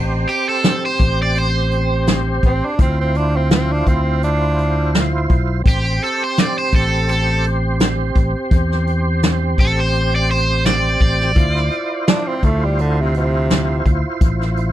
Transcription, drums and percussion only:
0.28 closed hi-hat medium
0.64 snare loud
0.64 closed hi-hat medium
1.00 kick medium
1.00 closed hi-hat medium
1.35 closed hi-hat medium
1.71 closed hi-hat medium
2.07 snare medium
2.07 closed hi-hat medium
2.43 kick medium
2.43 closed hi-hat medium
2.79 kick loud
2.79 closed hi-hat medium
3.15 closed hi-hat medium
3.50 snare loud
3.50 closed hi-hat medium
3.87 kick medium
3.87 closed hi-hat medium
4.23 closed hi-hat medium
4.58 closed hi-hat medium
4.94 snare medium
4.94 closed hi-hat medium
5.30 kick medium
5.30 closed hi-hat medium
5.66 kick loud
5.66 closed hi-hat medium
6.02 closed hi-hat medium
6.37 snare loud
6.37 closed hi-hat medium
6.73 kick medium
6.73 closed hi-hat medium
7.08 closed hi-hat medium
7.44 closed hi-hat medium
7.80 snare loud
7.80 closed hi-hat medium
8.16 kick medium
8.16 closed hi-hat medium
8.51 kick loud
8.51 closed hi-hat medium
8.72 snare soft
8.87 closed hi-hat medium
9.23 snare loud
9.23 closed hi-hat medium
9.58 kick medium
9.58 closed hi-hat medium
9.93 closed hi-hat medium
10.30 closed hi-hat medium
10.65 snare loud
10.65 closed hi-hat medium
11.01 kick medium
11.01 closed hi-hat medium
11.21 snare soft
11.36 kick loud
11.36 closed hi-hat medium
11.56 snare soft
11.71 closed hi-hat medium
12.07 snare loud
12.07 closed hi-hat medium
12.43 kick medium
12.43 closed hi-hat medium
12.79 closed hi-hat medium
13.14 closed hi-hat medium
13.50 snare loud
13.50 closed hi-hat medium
13.86 kick medium
13.86 closed hi-hat medium
14.21 kick loud
14.21 closed hi-hat medium
14.41 snare soft
14.57 closed hi-hat medium

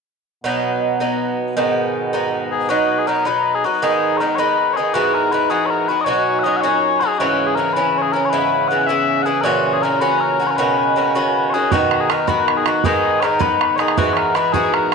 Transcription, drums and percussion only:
11.71 bodhran medium
11.91 bodhran medium
12.10 bodhran medium
12.28 bodhran medium
12.48 bodhran medium
12.66 bodhran medium
12.84 bodhran medium
13.23 bodhran medium
13.40 bodhran medium
13.61 bodhran medium
13.79 bodhran medium
13.88 bodhran medium
13.98 bodhran medium
14.17 bodhran medium
14.35 bodhran medium
14.54 bodhran medium
14.74 bodhran medium

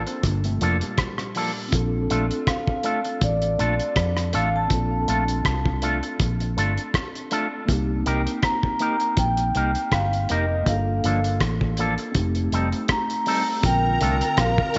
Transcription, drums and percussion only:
0.07 closed hi-hat soft
0.23 kick loud
0.23 closed hi-hat medium
0.44 closed hi-hat soft
0.61 closed hi-hat medium
0.81 closed hi-hat soft
0.98 kick loud
0.98 cross-stick medium
0.98 closed hi-hat medium
1.18 cross-stick medium
1.18 closed hi-hat medium
1.35 open hi-hat medium
1.72 kick loud
1.72 closed hi-hat medium
2.10 closed hi-hat medium
2.31 closed hi-hat soft
2.47 kick medium
2.47 cross-stick medium
2.47 closed hi-hat medium
2.67 kick medium
2.83 closed hi-hat medium
3.05 closed hi-hat soft
3.21 kick loud
3.21 closed hi-hat medium
3.42 closed hi-hat soft
3.59 closed hi-hat medium
3.80 closed hi-hat soft
3.96 kick loud
3.96 cross-stick medium
3.96 closed hi-hat medium
4.17 cross-stick medium
4.17 closed hi-hat medium
4.33 closed hi-hat medium
4.70 kick medium
4.70 closed hi-hat medium
5.08 closed hi-hat medium
5.28 closed hi-hat medium
5.45 kick medium
5.45 cross-stick medium
5.45 closed hi-hat medium
5.66 kick medium
5.82 closed hi-hat medium
6.03 closed hi-hat soft
6.20 kick loud
6.20 closed hi-hat medium
6.40 closed hi-hat soft
6.58 closed hi-hat medium
6.78 closed hi-hat soft
6.94 kick loud
6.94 cross-stick medium
6.94 closed hi-hat medium
7.15 closed hi-hat soft
7.31 closed hi-hat medium
7.68 kick loud
7.68 closed hi-hat medium
8.06 closed hi-hat medium
8.27 closed hi-hat medium
8.43 kick medium
8.43 cross-stick medium
8.43 closed hi-hat medium
8.63 kick medium
8.79 closed hi-hat medium
9.00 closed hi-hat soft
9.17 kick loud
9.17 closed hi-hat medium
9.37 closed hi-hat medium
9.55 closed hi-hat medium
9.75 closed hi-hat soft
9.92 kick loud
9.92 cross-stick medium
9.92 closed hi-hat medium
10.13 closed hi-hat soft
10.29 closed hi-hat medium
10.66 kick loud
10.66 closed hi-hat medium
11.04 closed hi-hat medium
11.24 closed hi-hat soft
11.40 kick loud
11.40 cross-stick medium
11.40 closed hi-hat medium
11.61 kick medium
11.77 closed hi-hat medium
11.98 closed hi-hat soft
12.15 kick loud
12.15 closed hi-hat medium
12.35 closed hi-hat soft
12.52 closed hi-hat medium
12.72 closed hi-hat soft
12.88 kick loud
12.88 cross-stick loud
12.88 closed hi-hat medium
13.10 closed hi-hat soft
13.26 open hi-hat medium
13.63 kick loud
13.63 closed hi-hat loud
14.01 closed hi-hat medium
14.21 closed hi-hat medium
14.37 kick loud
14.37 cross-stick loud
14.37 closed hi-hat medium
14.58 kick medium
14.74 closed hi-hat medium

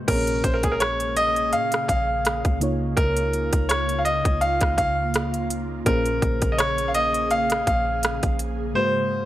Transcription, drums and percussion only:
0.08 kick loud
0.08 closed hi-hat medium
0.08 crash medium
0.27 closed hi-hat medium
0.44 kick medium
0.44 closed hi-hat medium
0.63 kick medium
0.63 closed hi-hat medium
0.80 cross-stick loud
0.80 closed hi-hat medium
1.00 closed hi-hat soft
1.17 closed hi-hat medium
1.36 closed hi-hat soft
1.53 closed hi-hat medium
1.72 cross-stick medium
1.72 closed hi-hat medium
1.89 kick medium
1.89 closed hi-hat medium
2.25 cross-stick loud
2.25 closed hi-hat medium
2.45 kick loud
2.45 closed hi-hat soft
2.61 closed hi-hat medium
2.97 kick loud
2.97 closed hi-hat medium
3.17 closed hi-hat medium
3.33 closed hi-hat medium
3.53 kick medium
3.53 closed hi-hat medium
3.69 cross-stick loud
3.69 closed hi-hat medium
3.89 closed hi-hat medium
4.05 closed hi-hat medium
4.25 kick loud
4.25 closed hi-hat soft
4.41 closed hi-hat medium
4.61 kick medium
4.61 cross-stick medium
4.61 closed hi-hat medium
4.78 kick medium
4.78 closed hi-hat medium
5.14 cross-stick loud
5.14 closed hi-hat medium
5.34 closed hi-hat soft
5.50 closed hi-hat medium
5.86 kick loud
5.86 closed hi-hat medium
6.06 closed hi-hat soft
6.22 kick medium
6.22 closed hi-hat medium
6.42 kick medium
6.42 closed hi-hat medium
6.59 cross-stick loud
6.59 closed hi-hat medium
6.78 closed hi-hat medium
6.94 closed hi-hat medium
7.14 closed hi-hat soft
7.31 closed hi-hat medium
7.50 cross-stick loud
7.50 closed hi-hat medium
7.67 kick medium
7.67 closed hi-hat medium
8.03 cross-stick loud
8.03 closed hi-hat medium
8.23 kick loud
8.23 closed hi-hat soft
8.39 closed hi-hat medium

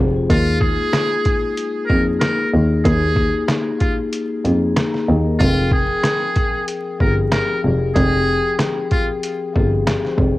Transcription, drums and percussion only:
0.30 kick loud
0.30 closed hi-hat medium
0.61 kick loud
0.93 cross-stick medium
0.93 snare loud
0.93 closed hi-hat medium
1.25 kick medium
1.25 closed hi-hat soft
1.57 closed hi-hat medium
1.90 kick medium
2.21 cross-stick loud
2.21 snare loud
2.21 closed hi-hat medium
2.85 kick loud
2.85 closed hi-hat medium
3.16 kick loud
3.48 cross-stick medium
3.48 snare loud
3.48 closed hi-hat medium
3.80 kick medium
3.80 closed hi-hat soft
4.13 closed hi-hat medium
4.45 closed hi-hat medium
4.76 cross-stick loud
4.76 snare loud
4.76 closed hi-hat medium
4.94 snare soft
5.40 kick loud
5.40 closed hi-hat medium
5.71 kick loud
6.03 cross-stick medium
6.03 snare loud
6.03 closed hi-hat medium
6.36 kick medium
6.36 closed hi-hat soft
6.68 closed hi-hat medium
7.00 kick medium
7.32 cross-stick loud
7.32 snare loud
7.32 closed hi-hat medium
7.96 kick loud
7.96 closed hi-hat medium
8.59 cross-stick medium
8.59 snare loud
8.59 closed hi-hat medium
8.91 kick medium
8.91 closed hi-hat soft
9.23 closed hi-hat medium
9.56 kick medium
9.87 cross-stick loud
9.87 snare loud
9.87 closed hi-hat medium
10.05 snare soft
10.18 kick medium

